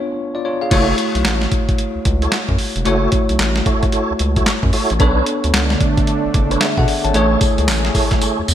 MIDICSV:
0, 0, Header, 1, 6, 480
1, 0, Start_track
1, 0, Key_signature, 3, "minor"
1, 0, Tempo, 535714
1, 641, Time_signature, 4, 2, 24, 8
1, 7652, End_track
2, 0, Start_track
2, 0, Title_t, "Tonewheel organ"
2, 0, Program_c, 0, 16
2, 638, Note_on_c, 0, 64, 93
2, 639, Note_on_c, 0, 66, 79
2, 641, Note_on_c, 0, 69, 89
2, 641, Note_on_c, 0, 73, 100
2, 865, Note_off_c, 0, 64, 0
2, 866, Note_off_c, 0, 66, 0
2, 867, Note_off_c, 0, 69, 0
2, 867, Note_off_c, 0, 73, 0
2, 1989, Note_on_c, 0, 64, 74
2, 1991, Note_on_c, 0, 66, 69
2, 1991, Note_on_c, 0, 69, 71
2, 1993, Note_on_c, 0, 73, 86
2, 2129, Note_off_c, 0, 64, 0
2, 2130, Note_off_c, 0, 66, 0
2, 2130, Note_off_c, 0, 69, 0
2, 2131, Note_off_c, 0, 73, 0
2, 2554, Note_on_c, 0, 64, 96
2, 2557, Note_on_c, 0, 66, 82
2, 2558, Note_on_c, 0, 69, 89
2, 2561, Note_on_c, 0, 73, 110
2, 2783, Note_off_c, 0, 64, 0
2, 2785, Note_off_c, 0, 66, 0
2, 2785, Note_off_c, 0, 69, 0
2, 2787, Note_off_c, 0, 73, 0
2, 3278, Note_on_c, 0, 64, 66
2, 3279, Note_on_c, 0, 66, 61
2, 3282, Note_on_c, 0, 69, 67
2, 3284, Note_on_c, 0, 73, 75
2, 3459, Note_off_c, 0, 64, 0
2, 3460, Note_off_c, 0, 66, 0
2, 3461, Note_off_c, 0, 69, 0
2, 3463, Note_off_c, 0, 73, 0
2, 3519, Note_on_c, 0, 64, 75
2, 3520, Note_on_c, 0, 66, 69
2, 3523, Note_on_c, 0, 69, 69
2, 3525, Note_on_c, 0, 73, 88
2, 3700, Note_off_c, 0, 64, 0
2, 3701, Note_off_c, 0, 66, 0
2, 3702, Note_off_c, 0, 69, 0
2, 3703, Note_off_c, 0, 73, 0
2, 3910, Note_on_c, 0, 64, 78
2, 3913, Note_on_c, 0, 66, 65
2, 3913, Note_on_c, 0, 69, 68
2, 3916, Note_on_c, 0, 73, 82
2, 4049, Note_off_c, 0, 64, 0
2, 4051, Note_off_c, 0, 66, 0
2, 4051, Note_off_c, 0, 69, 0
2, 4052, Note_off_c, 0, 73, 0
2, 4238, Note_on_c, 0, 64, 81
2, 4241, Note_on_c, 0, 66, 76
2, 4243, Note_on_c, 0, 69, 73
2, 4244, Note_on_c, 0, 73, 90
2, 4420, Note_off_c, 0, 64, 0
2, 4421, Note_off_c, 0, 66, 0
2, 4422, Note_off_c, 0, 69, 0
2, 4423, Note_off_c, 0, 73, 0
2, 4479, Note_on_c, 0, 62, 97
2, 4481, Note_on_c, 0, 69, 84
2, 4482, Note_on_c, 0, 71, 86
2, 4485, Note_on_c, 0, 73, 111
2, 4706, Note_off_c, 0, 62, 0
2, 4707, Note_off_c, 0, 69, 0
2, 4707, Note_off_c, 0, 71, 0
2, 4709, Note_off_c, 0, 73, 0
2, 5828, Note_on_c, 0, 62, 76
2, 5832, Note_on_c, 0, 69, 69
2, 5833, Note_on_c, 0, 71, 73
2, 5834, Note_on_c, 0, 73, 80
2, 5968, Note_off_c, 0, 62, 0
2, 5970, Note_off_c, 0, 69, 0
2, 5971, Note_off_c, 0, 71, 0
2, 5972, Note_off_c, 0, 73, 0
2, 6400, Note_on_c, 0, 64, 93
2, 6401, Note_on_c, 0, 68, 90
2, 6404, Note_on_c, 0, 69, 89
2, 6406, Note_on_c, 0, 73, 112
2, 6626, Note_off_c, 0, 64, 0
2, 6627, Note_off_c, 0, 68, 0
2, 6628, Note_off_c, 0, 69, 0
2, 6629, Note_off_c, 0, 73, 0
2, 7120, Note_on_c, 0, 64, 78
2, 7123, Note_on_c, 0, 68, 66
2, 7125, Note_on_c, 0, 69, 62
2, 7126, Note_on_c, 0, 73, 84
2, 7301, Note_off_c, 0, 64, 0
2, 7302, Note_off_c, 0, 68, 0
2, 7303, Note_off_c, 0, 69, 0
2, 7304, Note_off_c, 0, 73, 0
2, 7360, Note_on_c, 0, 64, 80
2, 7363, Note_on_c, 0, 68, 72
2, 7363, Note_on_c, 0, 69, 68
2, 7366, Note_on_c, 0, 73, 82
2, 7540, Note_off_c, 0, 64, 0
2, 7542, Note_off_c, 0, 68, 0
2, 7542, Note_off_c, 0, 69, 0
2, 7543, Note_off_c, 0, 73, 0
2, 7652, End_track
3, 0, Start_track
3, 0, Title_t, "Tine electric piano"
3, 0, Program_c, 1, 4
3, 0, Control_c, 1, 64, 127
3, 0, Note_on_c, 1, 59, 75
3, 0, Note_on_c, 1, 62, 66
3, 0, Note_on_c, 1, 65, 71
3, 0, Note_on_c, 1, 73, 80
3, 312, Note_on_c, 1, 74, 63
3, 318, Note_off_c, 1, 65, 0
3, 318, Note_on_c, 1, 65, 53
3, 396, Note_off_c, 1, 74, 0
3, 397, Note_off_c, 1, 65, 0
3, 402, Note_off_c, 1, 73, 0
3, 402, Note_on_c, 1, 73, 74
3, 408, Note_on_c, 1, 65, 56
3, 545, Note_off_c, 1, 73, 0
3, 548, Note_off_c, 1, 65, 0
3, 551, Note_on_c, 1, 77, 66
3, 555, Note_on_c, 1, 68, 54
3, 617, Note_off_c, 1, 59, 0
3, 619, Note_off_c, 1, 62, 0
3, 632, Note_on_c, 1, 57, 75
3, 639, Note_on_c, 1, 64, 71
3, 646, Note_on_c, 1, 66, 66
3, 651, Note_on_c, 1, 73, 87
3, 653, Control_c, 1, 64, 0
3, 780, Note_off_c, 1, 77, 0
3, 781, Note_off_c, 1, 68, 0
3, 805, Control_c, 1, 64, 127
3, 2520, Note_off_c, 1, 57, 0
3, 2524, Note_off_c, 1, 64, 0
3, 2528, Note_off_c, 1, 66, 0
3, 2530, Note_off_c, 1, 73, 0
3, 2551, Note_on_c, 1, 57, 77
3, 2556, Note_on_c, 1, 64, 71
3, 2565, Note_on_c, 1, 66, 74
3, 2571, Note_on_c, 1, 73, 88
3, 4440, Note_off_c, 1, 57, 0
3, 4443, Note_off_c, 1, 64, 0
3, 4447, Note_off_c, 1, 66, 0
3, 4450, Note_off_c, 1, 73, 0
3, 4472, Note_on_c, 1, 59, 80
3, 4478, Note_on_c, 1, 62, 75
3, 4485, Note_on_c, 1, 69, 77
3, 4492, Note_on_c, 1, 73, 88
3, 4493, Control_c, 1, 64, 0
3, 4627, Control_c, 1, 64, 127
3, 5894, Note_off_c, 1, 69, 0
3, 5898, Note_off_c, 1, 73, 0
3, 5920, Note_on_c, 1, 76, 66
3, 5925, Note_on_c, 1, 68, 60
3, 6064, Note_off_c, 1, 76, 0
3, 6066, Note_off_c, 1, 68, 0
3, 6074, Note_on_c, 1, 78, 74
3, 6080, Note_on_c, 1, 69, 61
3, 6301, Note_off_c, 1, 78, 0
3, 6304, Note_off_c, 1, 69, 0
3, 6311, Note_on_c, 1, 81, 66
3, 6317, Note_on_c, 1, 73, 57
3, 6361, Note_off_c, 1, 59, 0
3, 6363, Note_off_c, 1, 62, 0
3, 6394, Note_on_c, 1, 57, 81
3, 6402, Note_on_c, 1, 64, 70
3, 6406, Note_off_c, 1, 73, 0
3, 6409, Note_on_c, 1, 68, 78
3, 6414, Control_c, 1, 64, 0
3, 6417, Note_on_c, 1, 73, 96
3, 6539, Note_off_c, 1, 81, 0
3, 6575, Control_c, 1, 64, 127
3, 7652, Note_off_c, 1, 57, 0
3, 7652, Note_off_c, 1, 64, 0
3, 7652, Note_off_c, 1, 68, 0
3, 7652, Note_off_c, 1, 73, 0
3, 7652, End_track
4, 0, Start_track
4, 0, Title_t, "Analog synth pad"
4, 0, Program_c, 2, 89
4, 4485, Note_on_c, 2, 50, 84
4, 4489, Note_on_c, 2, 57, 74
4, 4489, Note_on_c, 2, 62, 97
4, 6386, Note_off_c, 2, 57, 0
4, 6386, Note_off_c, 2, 62, 0
4, 6401, Note_on_c, 2, 57, 74
4, 6403, Note_on_c, 2, 68, 92
4, 7652, Note_off_c, 2, 50, 0
4, 7652, Note_off_c, 2, 57, 0
4, 7652, Note_off_c, 2, 68, 0
4, 7652, End_track
5, 0, Start_track
5, 0, Title_t, "Analog synth bass"
5, 0, Program_c, 3, 38
5, 640, Note_on_c, 3, 30, 106
5, 838, Note_off_c, 3, 30, 0
5, 1032, Note_on_c, 3, 35, 81
5, 1105, Note_off_c, 3, 35, 0
5, 1120, Note_on_c, 3, 33, 91
5, 1318, Note_off_c, 3, 33, 0
5, 1750, Note_on_c, 3, 37, 47
5, 1786, Note_off_c, 3, 37, 0
5, 1842, Note_on_c, 3, 37, 98
5, 2039, Note_off_c, 3, 37, 0
5, 2229, Note_on_c, 3, 42, 92
5, 2303, Note_off_c, 3, 42, 0
5, 2471, Note_on_c, 3, 28, 88
5, 2545, Note_off_c, 3, 28, 0
5, 2561, Note_on_c, 3, 30, 114
5, 2758, Note_off_c, 3, 30, 0
5, 2952, Note_on_c, 3, 35, 73
5, 3025, Note_off_c, 3, 35, 0
5, 3043, Note_on_c, 3, 33, 96
5, 3239, Note_off_c, 3, 33, 0
5, 3679, Note_on_c, 3, 37, 49
5, 3713, Note_off_c, 3, 37, 0
5, 3766, Note_on_c, 3, 37, 89
5, 3961, Note_off_c, 3, 37, 0
5, 4150, Note_on_c, 3, 42, 95
5, 4224, Note_off_c, 3, 42, 0
5, 4398, Note_on_c, 3, 33, 85
5, 4469, Note_off_c, 3, 33, 0
5, 4482, Note_on_c, 3, 35, 106
5, 4679, Note_off_c, 3, 35, 0
5, 4878, Note_on_c, 3, 38, 89
5, 4949, Note_off_c, 3, 38, 0
5, 4965, Note_on_c, 3, 37, 91
5, 5161, Note_off_c, 3, 37, 0
5, 5600, Note_on_c, 3, 30, 49
5, 5633, Note_off_c, 3, 30, 0
5, 5685, Note_on_c, 3, 30, 95
5, 5881, Note_off_c, 3, 30, 0
5, 6074, Note_on_c, 3, 47, 88
5, 6146, Note_off_c, 3, 47, 0
5, 6314, Note_on_c, 3, 32, 91
5, 6387, Note_off_c, 3, 32, 0
5, 6403, Note_on_c, 3, 33, 116
5, 6599, Note_off_c, 3, 33, 0
5, 6793, Note_on_c, 3, 37, 83
5, 6883, Note_on_c, 3, 33, 96
5, 6897, Note_off_c, 3, 37, 0
5, 7080, Note_off_c, 3, 33, 0
5, 7519, Note_on_c, 3, 40, 51
5, 7553, Note_off_c, 3, 40, 0
5, 7603, Note_on_c, 3, 40, 89
5, 7652, Note_off_c, 3, 40, 0
5, 7652, End_track
6, 0, Start_track
6, 0, Title_t, "Drums"
6, 638, Note_on_c, 9, 42, 82
6, 638, Note_on_c, 9, 49, 97
6, 639, Note_on_c, 9, 36, 102
6, 727, Note_off_c, 9, 49, 0
6, 728, Note_off_c, 9, 42, 0
6, 729, Note_off_c, 9, 36, 0
6, 877, Note_on_c, 9, 42, 70
6, 967, Note_off_c, 9, 42, 0
6, 1032, Note_on_c, 9, 42, 55
6, 1117, Note_off_c, 9, 42, 0
6, 1117, Note_on_c, 9, 42, 73
6, 1118, Note_on_c, 9, 38, 103
6, 1126, Note_on_c, 9, 39, 80
6, 1207, Note_off_c, 9, 38, 0
6, 1207, Note_off_c, 9, 42, 0
6, 1216, Note_off_c, 9, 39, 0
6, 1268, Note_on_c, 9, 38, 63
6, 1358, Note_off_c, 9, 38, 0
6, 1358, Note_on_c, 9, 42, 68
6, 1359, Note_on_c, 9, 36, 92
6, 1448, Note_off_c, 9, 42, 0
6, 1449, Note_off_c, 9, 36, 0
6, 1511, Note_on_c, 9, 36, 96
6, 1511, Note_on_c, 9, 42, 52
6, 1599, Note_off_c, 9, 42, 0
6, 1599, Note_on_c, 9, 42, 71
6, 1601, Note_off_c, 9, 36, 0
6, 1688, Note_off_c, 9, 42, 0
6, 1839, Note_on_c, 9, 42, 80
6, 1841, Note_on_c, 9, 36, 86
6, 1929, Note_off_c, 9, 42, 0
6, 1931, Note_off_c, 9, 36, 0
6, 1990, Note_on_c, 9, 42, 52
6, 2077, Note_on_c, 9, 38, 103
6, 2078, Note_off_c, 9, 42, 0
6, 2078, Note_on_c, 9, 42, 66
6, 2085, Note_on_c, 9, 39, 86
6, 2166, Note_off_c, 9, 38, 0
6, 2167, Note_off_c, 9, 42, 0
6, 2175, Note_off_c, 9, 39, 0
6, 2228, Note_on_c, 9, 36, 97
6, 2316, Note_on_c, 9, 46, 67
6, 2317, Note_off_c, 9, 36, 0
6, 2406, Note_off_c, 9, 46, 0
6, 2471, Note_on_c, 9, 42, 50
6, 2558, Note_off_c, 9, 42, 0
6, 2558, Note_on_c, 9, 42, 76
6, 2647, Note_off_c, 9, 42, 0
6, 2794, Note_on_c, 9, 42, 77
6, 2799, Note_on_c, 9, 36, 96
6, 2884, Note_off_c, 9, 42, 0
6, 2889, Note_off_c, 9, 36, 0
6, 2950, Note_on_c, 9, 42, 56
6, 3038, Note_off_c, 9, 42, 0
6, 3038, Note_on_c, 9, 38, 106
6, 3038, Note_on_c, 9, 42, 71
6, 3047, Note_on_c, 9, 39, 86
6, 3128, Note_off_c, 9, 38, 0
6, 3128, Note_off_c, 9, 42, 0
6, 3136, Note_off_c, 9, 39, 0
6, 3187, Note_on_c, 9, 38, 64
6, 3276, Note_off_c, 9, 38, 0
6, 3279, Note_on_c, 9, 42, 63
6, 3280, Note_on_c, 9, 36, 93
6, 3368, Note_off_c, 9, 42, 0
6, 3369, Note_off_c, 9, 36, 0
6, 3429, Note_on_c, 9, 42, 51
6, 3431, Note_on_c, 9, 36, 90
6, 3516, Note_off_c, 9, 42, 0
6, 3516, Note_on_c, 9, 42, 77
6, 3520, Note_off_c, 9, 36, 0
6, 3606, Note_off_c, 9, 42, 0
6, 3757, Note_on_c, 9, 42, 76
6, 3847, Note_off_c, 9, 42, 0
6, 3910, Note_on_c, 9, 42, 53
6, 3911, Note_on_c, 9, 36, 89
6, 3998, Note_on_c, 9, 38, 105
6, 3999, Note_off_c, 9, 42, 0
6, 3999, Note_on_c, 9, 42, 67
6, 4000, Note_off_c, 9, 36, 0
6, 4007, Note_on_c, 9, 39, 84
6, 4088, Note_off_c, 9, 38, 0
6, 4089, Note_off_c, 9, 42, 0
6, 4096, Note_off_c, 9, 39, 0
6, 4149, Note_on_c, 9, 36, 101
6, 4237, Note_on_c, 9, 46, 70
6, 4239, Note_off_c, 9, 36, 0
6, 4327, Note_off_c, 9, 46, 0
6, 4391, Note_on_c, 9, 42, 50
6, 4477, Note_off_c, 9, 42, 0
6, 4477, Note_on_c, 9, 42, 86
6, 4480, Note_on_c, 9, 36, 118
6, 4567, Note_off_c, 9, 42, 0
6, 4570, Note_off_c, 9, 36, 0
6, 4717, Note_on_c, 9, 42, 77
6, 4807, Note_off_c, 9, 42, 0
6, 4873, Note_on_c, 9, 42, 54
6, 4961, Note_off_c, 9, 42, 0
6, 4961, Note_on_c, 9, 42, 73
6, 4962, Note_on_c, 9, 38, 112
6, 4970, Note_on_c, 9, 39, 86
6, 5051, Note_off_c, 9, 38, 0
6, 5051, Note_off_c, 9, 42, 0
6, 5060, Note_off_c, 9, 39, 0
6, 5110, Note_on_c, 9, 38, 66
6, 5199, Note_off_c, 9, 38, 0
6, 5201, Note_on_c, 9, 42, 69
6, 5202, Note_on_c, 9, 36, 97
6, 5291, Note_off_c, 9, 42, 0
6, 5292, Note_off_c, 9, 36, 0
6, 5353, Note_on_c, 9, 36, 98
6, 5354, Note_on_c, 9, 42, 50
6, 5442, Note_off_c, 9, 42, 0
6, 5442, Note_on_c, 9, 42, 72
6, 5443, Note_off_c, 9, 36, 0
6, 5531, Note_off_c, 9, 42, 0
6, 5682, Note_on_c, 9, 42, 74
6, 5684, Note_on_c, 9, 36, 94
6, 5772, Note_off_c, 9, 42, 0
6, 5774, Note_off_c, 9, 36, 0
6, 5834, Note_on_c, 9, 42, 58
6, 5921, Note_off_c, 9, 42, 0
6, 5921, Note_on_c, 9, 38, 106
6, 5921, Note_on_c, 9, 42, 74
6, 5929, Note_on_c, 9, 39, 88
6, 6010, Note_off_c, 9, 38, 0
6, 6011, Note_off_c, 9, 42, 0
6, 6019, Note_off_c, 9, 39, 0
6, 6071, Note_on_c, 9, 36, 94
6, 6160, Note_off_c, 9, 36, 0
6, 6163, Note_on_c, 9, 46, 71
6, 6253, Note_off_c, 9, 46, 0
6, 6313, Note_on_c, 9, 42, 51
6, 6400, Note_off_c, 9, 42, 0
6, 6400, Note_on_c, 9, 42, 81
6, 6490, Note_off_c, 9, 42, 0
6, 6639, Note_on_c, 9, 42, 81
6, 6639, Note_on_c, 9, 54, 61
6, 6641, Note_on_c, 9, 36, 101
6, 6728, Note_off_c, 9, 42, 0
6, 6729, Note_off_c, 9, 54, 0
6, 6731, Note_off_c, 9, 36, 0
6, 6793, Note_on_c, 9, 42, 55
6, 6880, Note_off_c, 9, 42, 0
6, 6880, Note_on_c, 9, 38, 115
6, 6880, Note_on_c, 9, 42, 80
6, 6882, Note_on_c, 9, 54, 92
6, 6889, Note_on_c, 9, 39, 92
6, 6970, Note_off_c, 9, 38, 0
6, 6970, Note_off_c, 9, 42, 0
6, 6972, Note_off_c, 9, 54, 0
6, 6978, Note_off_c, 9, 39, 0
6, 7031, Note_on_c, 9, 38, 61
6, 7121, Note_off_c, 9, 38, 0
6, 7121, Note_on_c, 9, 36, 98
6, 7122, Note_on_c, 9, 46, 69
6, 7122, Note_on_c, 9, 54, 57
6, 7210, Note_off_c, 9, 36, 0
6, 7211, Note_off_c, 9, 46, 0
6, 7212, Note_off_c, 9, 54, 0
6, 7267, Note_on_c, 9, 38, 65
6, 7272, Note_on_c, 9, 36, 98
6, 7272, Note_on_c, 9, 42, 51
6, 7357, Note_off_c, 9, 38, 0
6, 7359, Note_on_c, 9, 54, 68
6, 7361, Note_off_c, 9, 36, 0
6, 7361, Note_off_c, 9, 42, 0
6, 7361, Note_on_c, 9, 42, 81
6, 7449, Note_off_c, 9, 54, 0
6, 7451, Note_off_c, 9, 42, 0
6, 7601, Note_on_c, 9, 42, 72
6, 7601, Note_on_c, 9, 54, 72
6, 7652, Note_off_c, 9, 42, 0
6, 7652, Note_off_c, 9, 54, 0
6, 7652, End_track
0, 0, End_of_file